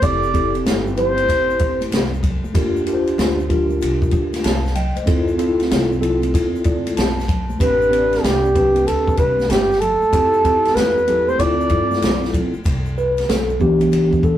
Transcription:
0.02 upright bass F1, tine electric piano C4 E4 G4 A4, flugelhorn D5, kick, ride, shaker
0.23 shaker
0.33 tine electric piano C4 E4 G4 A4, kick, ride, shaker
0.54 ride, shaker
0.66 upright bass G1, snare, hi-hat pedal, ride, shaker
0.87 shaker
0.97 tine electric piano C4 E4 G4 C5, flugelhorn C5, ride, low conga, shaker
1.17 ride, high conga, shaker
1.28 upright bass A1, kick, ride, shaker
1.50 shaker
1.59 kick, ride, shaker
1.81 ride, high conga, shaker
1.92 upright bass C2, snare, hi-hat pedal, ride, shaker
2.14 shaker
2.23 kick, ride, low conga, shaker
2.44 muted upright bass stroke, high conga, shaker
2.54 upright bass D#2, tine electric piano D4 F4 G4 A#4, kick, ride, shaker
2.76 shaker
2.86 tine electric piano D4 F4 G4 A#4, ride, shaker
2.94 tine electric piano C5
3.07 ride, shaker
3.18 upright bass D2, snare, hi-hat pedal, ride, shaker
3.40 shaker
3.49 tine electric piano D4 F4 G4 A#4, kick, ride, low conga, shaker
3.70 high conga, shaker
3.81 upright bass C2, ride, shaker
4.02 kick, shaker
4.11 upright bass D2, kick, ride, shaker
4.33 snare, ride, high conga, shaker
4.44 upright bass C2, tine electric piano F5 A5, snare, hi-hat pedal, ride, shaker
4.65 snare, shaker
4.75 tine electric piano D#5 G5, ride, low conga, shaker
4.96 tine electric piano C5 D#5, muted upright bass stroke, ride, high conga, shaker
5.06 upright bass D2, tine electric piano C4 E4 F4 A4, kick, ride, shaker
5.28 shaker
5.38 tine electric piano C4 E4 F4 A4, ride, shaker
5.59 snare, ride, shaker
5.71 upright bass C2, snare, hi-hat pedal, ride, shaker
5.92 shaker
6.00 tine electric piano C4 E4 F4 A4, ride, low conga, shaker
6.22 ride, high conga, shaker
6.34 upright bass E2, kick, ride, shaker
6.55 shaker
6.64 upright bass D2, tine electric piano D5, kick, ride, shaker
6.86 ride, high conga, shaker
6.97 upright bass B1, tine electric piano A5, snare, hi-hat pedal, ride, shaker
7.19 snare, shaker
7.28 kick, ride, low conga, shaker
7.49 high conga, shaker
7.59 upright bass A1, tine electric piano C4 D4 G4 B4, flugelhorn B4, kick, ride, shaker
7.81 shaker
7.90 tine electric piano C4 D4 G4 C#5, ride, shaker
7.98 tine electric piano D5
8.12 snare, ride, shaker
8.23 upright bass C2, flugelhorn G4, snare, hi-hat pedal, ride, shaker
8.45 shaker
8.54 tine electric piano C4 D4 G4 B4, kick, ride, low conga, shaker
8.76 ride, high conga, shaker
8.87 upright bass D2, flugelhorn A4, ride, shaker
9.08 kick, shaker
9.17 upright bass C2, flugelhorn B4, kick, ride, shaker
9.39 snare, high conga, shaker
9.49 upright bass G1, flugelhorn G4, snare, hi-hat pedal, ride, shaker
9.71 snare, shaker
9.81 flugelhorn A4, ride, low conga, shaker
10.02 muted upright bass stroke, high conga, shaker
10.12 upright bass F2, tine electric piano C4 E4 G4 A4, kick, ride, shaker
10.33 shaker
10.44 tine electric piano C4 E4 G4 A4, kick, ride, shaker
10.65 snare, ride, shaker
10.75 upright bass E2, flugelhorn B4, snare, hi-hat pedal, ride, shaker
10.98 shaker
11.07 tine electric piano C4 E4 G4 A4, ride, low conga, shaker
11.29 flugelhorn C5, high conga, shaker
11.39 upright bass D2, tine electric piano C4 E4 F4 A4, flugelhorn D5, kick, ride, shaker
11.61 shaker
11.69 upright bass G2, kick, ride, shaker
11.91 snare, high conga, shaker
12.02 upright bass B1, snare, hi-hat pedal, ride, shaker
12.23 snare, shaker
12.33 kick, ride, low conga, shaker
12.54 muted upright bass stroke, high conga, shaker
12.64 upright bass C2, kick, ride, shaker
12.86 shaker
12.98 tine electric piano B4, shaker
13.17 snare, ride, shaker
13.29 upright bass B1, tine electric piano A4, snare, hi-hat pedal, ride, shaker
13.50 shaker
13.60 tine electric piano E3 B3 D4 G4, kick, low conga, shaker
13.80 ride, high conga, shaker
13.92 upright bass A1, ride, shaker
14.13 kick, shaker
14.23 tine electric piano A4, kick, shaker

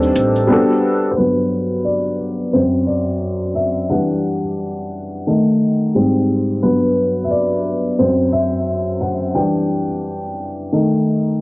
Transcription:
Already playing: upright bass D#2, upright piano G3 C4 D4 D#4 A4
0.02 shaker
0.16 upright bass A1, closed hi-hat, shaker
0.36 shaker
0.38 shaker
0.47 upright piano G3 B3 D4 F#4
0.52 upright piano A4
1.11 upright piano C5
1.17 upright piano G2 F#3 B3 B4
1.85 upright piano D5
2.53 upright piano F#2 F#3 C4 C5
2.87 upright piano D5
3.56 upright piano E5
3.90 upright piano E3 G3 D4 F#5
5.27 upright piano D#3 A3 D#4
5.95 upright piano G#2 G3 C4
6.63 upright piano G2 F#3 B3 B4
7.24 upright piano E5
7.31 upright piano D5
7.99 upright piano F#2 F#3 C4 C5
8.33 upright piano E5
9.01 upright piano F#5
9.35 upright piano E3 G3 D4 G5
10.72 upright piano D#3 A3 D#4

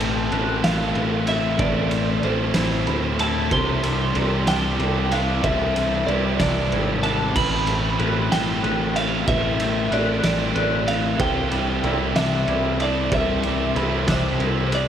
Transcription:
Already playing: picked electric bass A1, distorted electric guitar A2 E3 A3 C4 E4, string section E3 A3 A4, clean electric guitar E4 A5, felt piano B4
0.00 distorted electric guitar A3 C4 E4, ride
0.31 picked electric bass A1, distorted electric guitar E3 A3 C4 E4, clean electric guitar B4, ride
0.62 picked electric bass A1, distorted electric guitar A2 E3 A3 C4 E4, clean electric guitar F5, snare, ride
0.95 picked electric bass A1, ride
1.26 distorted electric guitar A3 C4 E4, clean electric guitar E5, ride
1.58 picked electric bass A1, distorted electric guitar A2 E3 A3 C4 E4, felt piano B4, clean electric guitar D5, kick, ride
1.91 distorted electric guitar A3 C4 E4, ride
2.22 picked electric bass A1, distorted electric guitar E3 A3 C4 E4, felt piano A4, clean electric guitar C5, ride
2.54 picked electric bass A1, distorted electric guitar A2 E3 A3 C4 E4, clean electric guitar C5, snare, ride
2.87 picked electric bass D2, felt piano B5, ride
3.18 distorted electric guitar A3 C4 E4, clean electric guitar A5, ride
3.51 picked electric bass C2, distorted electric guitar C3 E3 G3 C4 E4, string section C3 E3 C4 D5, felt piano C5, clean electric guitar C6, kick, ride
3.82 distorted electric guitar G3 C4 E4, ride
4.14 picked electric bass C2, distorted electric guitar E3 G3 C4 E4, felt piano D5, ride
4.47 picked electric bass C2, distorted electric guitar C3 E3 G3 C4 E4, clean electric guitar D4 G5, snare, ride
4.79 picked electric bass C2, felt piano D5, ride
5.10 distorted electric guitar G3 C4 E4, clean electric guitar D4 F5, ride
5.41 picked electric bass C2, distorted electric guitar C3 E3 G3 C4 E4, felt piano C5, clean electric guitar E5, kick, ride
5.74 distorted electric guitar G3 C4 E4, ride
6.07 picked electric bass C2, distorted electric guitar E3 G3 C4, felt piano B4, clean electric guitar D5, ride
6.11 distorted electric guitar E4
6.39 picked electric bass C2, distorted electric guitar C3 E3 G3 C4 E4, clean electric guitar D4 D5, kick, snare, ride
6.71 picked electric bass G#1, clean electric guitar E4, felt piano C5, ride
7.02 distorted electric guitar G3 C4 E4, clean electric guitar D4 A5, ride
7.34 picked electric bass A1, distorted electric guitar A2 E3 A3 C4 E4, string section A3 B4, felt piano B4, clean electric guitar B5, kick, crash
7.66 distorted electric guitar A3 C4 E4, ride
7.98 picked electric bass A1, distorted electric guitar E3 A3 C4 E4, clean electric guitar B4, ride
8.29 picked electric bass A1, distorted electric guitar A2 E3 A3 C4 E4, clean electric guitar G5, snare, ride
8.63 picked electric bass A1, clean electric guitar B4, ride
8.93 distorted electric guitar A3 C4 E4, clean electric guitar F5, ride
9.26 picked electric bass A1, distorted electric guitar A2 E3 A3 C4 E4, felt piano B4, clean electric guitar E5, kick, ride
9.59 distorted electric guitar A3 C4 E4, ride
9.90 picked electric bass A1, distorted electric guitar E3 A3 C4 E4, felt piano A4, clean electric guitar B4 D5, ride
10.22 picked electric bass A1, distorted electric guitar A2 E3 A3 C4 E4, clean electric guitar D5, snare, ride
10.55 picked electric bass A1, felt piano B4, clean electric guitar B4, ride
10.86 distorted electric guitar A3 C4 E4, clean electric guitar F5, ride
11.17 picked electric bass C2, distorted electric guitar C3 E3 G3 C4 E4, string section C3 C4 D5, felt piano C5, clean electric guitar G5, kick, ride
11.50 distorted electric guitar G3 C4 E4, ride
11.82 picked electric bass C2, distorted electric guitar C3 E3 G3 C4 E4, felt piano D5, ride
12.15 picked electric bass C2, distorted electric guitar C3 E3 G3 C4 E4, clean electric guitar D4 E5, snare, ride
12.47 picked electric bass C2, clean electric guitar E4, felt piano D5, ride
12.79 distorted electric guitar G3 C4 E4, clean electric guitar D4 D5, ride
13.10 picked electric bass C2, distorted electric guitar C3 E3 G3 C4 E4, felt piano C5, string section E5, kick, ride
13.15 clean electric guitar E5
13.42 distorted electric guitar G3 C4 E4, ride
13.74 picked electric bass C2, distorted electric guitar C3 E3 G3 C4 E4, felt piano B5, ride
14.06 picked electric bass C2, distorted electric guitar C3 E3 G3 C4 E4, clean electric guitar D4, kick, snare, ride
14.12 clean electric guitar C5
14.40 picked electric bass C2, clean electric guitar E4, felt piano C5, ride
14.70 distorted electric guitar G3 C4 E4, clean electric guitar D4, ride
14.75 clean electric guitar D5

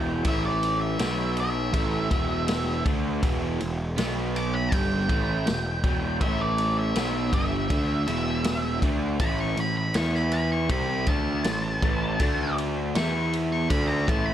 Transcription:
Already playing: picked electric bass E1, overdriven electric guitar E2 B2 E3, lead electric guitar G5
0.25 picked electric bass A1, overdriven electric guitar A2 E3 A3, lead electric guitar E5, kick, ride
0.45 lead electric guitar D5
0.63 ride
0.81 lead electric guitar E5
0.99 picked electric bass B1, overdriven electric guitar B2 F#3 B3, snare, ride
1.37 lead electric guitar E5, ride
1.73 picked electric bass A1, overdriven electric guitar A2 E3 A3, kick, ride
2.11 picked electric bass E1, overdriven electric guitar E2 B2 E3, kick, ride
2.48 snare, ride
2.85 picked electric bass D2, overdriven electric guitar D3 A3 D4, kick, ride
3.23 picked electric bass E1, overdriven electric guitar E2 B2 E3, kick, ride
3.60 picked electric bass E1, overdriven electric guitar E2 B2, ride
3.97 picked electric bass B1, overdriven electric guitar B2 F#3 B3, snare, ride
4.36 lead electric guitar D6, ride
4.55 lead electric guitar B5
4.72 picked electric bass G1, overdriven electric guitar G2 D3 G3, lead electric guitar G5, kick, ride
5.09 picked electric bass A1, overdriven electric guitar A2 E3 A3, kick, ride
5.46 picked electric bass E1, overdriven electric guitar E2 B2, snare, ride
5.84 picked electric bass E1, overdriven electric guitar E2 B2 E3, kick, ride
6.21 picked electric bass A1, overdriven electric guitar A2 E3 A3, lead electric guitar E5, kick, ride
6.41 lead electric guitar D5
6.58 ride
6.79 lead electric guitar E5
6.95 picked electric bass B1, overdriven electric guitar B2 F#3 B3, snare, ride
7.33 picked electric bass G1, overdriven electric guitar G2 D3 G3, lead electric guitar E5, kick, ride
7.70 picked electric bass D2, overdriven electric guitar D3 A3 D4, kick, ride
8.07 picked electric bass E1, overdriven electric guitar E2 B2 E3, ride
8.44 snare, ride
8.82 picked electric bass D2, overdriven electric guitar D3 A3 D4, kick, ride
9.19 picked electric bass A1, overdriven electric guitar A2 E3 A3, lead electric guitar B5, kick, ride
9.40 lead electric guitar C#6
9.57 picked electric bass A1, overdriven electric guitar A2 E3, lead electric guitar B5, ride
9.77 lead electric guitar B5
9.94 picked electric bass E2, overdriven electric guitar E3 B3 E4, lead electric guitar C#6, snare, ride
10.14 lead electric guitar B5, snare
10.32 lead electric guitar B5, ride
10.52 lead electric guitar C#6
10.69 picked electric bass C2, overdriven electric guitar C3 G3 C4, lead electric guitar B5, kick, ride
11.06 picked electric bass D2, overdriven electric guitar D3 A3 D4, lead electric guitar A5, kick, ride
11.44 picked electric bass A1, overdriven electric guitar A2 E3, snare, ride
11.82 picked electric bass A1, overdriven electric guitar A2 E3 A3, kick, ride
12.20 picked electric bass D2, overdriven electric guitar D3 A3 D4, kick, ride
12.58 ride
12.95 picked electric bass E2, overdriven electric guitar E3 B3 E4, lead electric guitar C#6, snare, ride
13.33 ride
13.53 lead electric guitar C#6
13.70 picked electric bass D2, overdriven electric guitar D3 A3 D4, lead electric guitar B5, kick, ride
13.88 lead electric guitar A#5
14.08 picked electric bass A1, overdriven electric guitar A2 E3 A3, lead electric guitar A5, kick, ride
14.25 lead electric guitar B5

